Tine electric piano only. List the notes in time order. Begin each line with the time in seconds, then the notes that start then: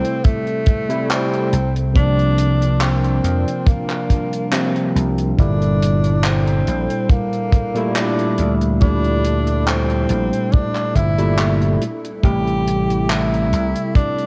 Already playing: C3 G3 A3 E4
0.89 C3 G3 A3 E4
1.94 C3 F3 A#3 D4
4.52 C3 F3 A#3 C4
5.36 A#2 G3 E4 A4
7.74 A#2 G3 A3 E4
8.80 A#2 G3 A3 E4
11.18 A#2 G3 A3 E4
12.23 C3 G3 A3 E4